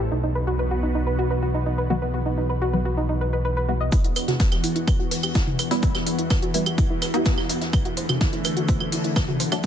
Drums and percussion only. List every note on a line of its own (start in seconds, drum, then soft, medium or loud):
3.92 kick loud
3.92 closed hi-hat soft
3.92 shaker medium
4.04 closed hi-hat soft
4.16 open hi-hat loud
4.16 claves soft
4.16 shaker medium
4.28 snare soft
4.28 closed hi-hat soft
4.28 mid tom medium
4.40 kick loud
4.40 snare loud
4.40 closed hi-hat soft
4.40 shaker medium
4.52 snare soft
4.52 closed hi-hat soft
4.52 claves soft
4.64 open hi-hat loud
4.64 shaker medium
4.76 closed hi-hat soft
4.88 kick loud
4.88 closed hi-hat soft
4.88 claves soft
4.88 shaker medium
4.99 closed hi-hat soft
5.11 open hi-hat loud
5.11 open hi-hat medium
5.23 closed hi-hat soft
5.23 claves soft
5.35 kick loud
5.35 snare loud
5.35 closed hi-hat soft
5.35 shaker medium
5.47 closed hi-hat soft
5.47 mid tom medium
5.59 open hi-hat loud
5.59 claves medium
5.59 shaker medium
5.71 snare soft
5.71 open hi-hat medium
5.83 kick loud
5.83 closed hi-hat soft
5.83 shaker medium
5.94 snare soft
5.94 closed hi-hat soft
5.94 claves medium
6.07 open hi-hat loud
6.07 shaker medium
6.19 closed hi-hat soft
6.30 kick loud
6.30 snare loud
6.30 closed hi-hat soft
6.30 claves soft
6.30 shaker medium
6.42 closed hi-hat soft
6.54 open hi-hat loud
6.54 shaker medium
6.66 closed hi-hat soft
6.66 claves medium
6.78 kick loud
6.78 closed hi-hat soft
6.78 shaker medium
7.02 snare soft
7.02 open hi-hat loud
7.02 claves medium
7.02 shaker medium
7.14 closed hi-hat soft
7.25 kick loud
7.25 snare loud
7.25 closed hi-hat soft
7.25 shaker medium
7.38 snare soft
7.38 claves medium
7.49 open hi-hat loud
7.49 shaker medium
7.61 snare medium
7.61 closed hi-hat soft
7.73 kick loud
7.73 closed hi-hat soft
7.73 claves medium
7.73 shaker medium
7.85 closed hi-hat soft
7.97 open hi-hat loud
7.97 shaker medium
8.09 snare soft
8.09 closed hi-hat soft
8.09 mid tom medium
8.09 claves medium
8.21 kick loud
8.21 snare loud
8.21 closed hi-hat soft
8.21 shaker medium
8.33 snare soft
8.33 closed hi-hat soft
8.44 open hi-hat loud
8.44 claves medium
8.44 shaker medium
8.57 closed hi-hat soft
8.68 kick loud
8.68 closed hi-hat soft
8.68 shaker medium
8.80 closed hi-hat soft
8.80 claves medium
8.92 open hi-hat loud
8.92 open hi-hat medium
9.04 closed hi-hat soft
9.16 kick loud
9.16 snare loud
9.16 closed hi-hat soft
9.16 claves medium
9.16 shaker medium
9.28 closed hi-hat soft
9.28 mid tom medium
9.40 open hi-hat loud
9.40 shaker medium
9.52 snare soft
9.52 open hi-hat medium
9.52 claves medium
9.63 shaker medium